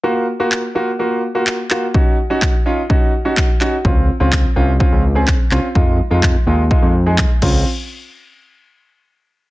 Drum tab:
CC |--------|--------|--------|-------x|
CP |--x---xx|--x---xx|--x---xx|--x---x-|
BD |--------|o-o-o-o-|o-o-o-o-|o-o-o-oo|

CC |--------|
CP |--------|
BD |--------|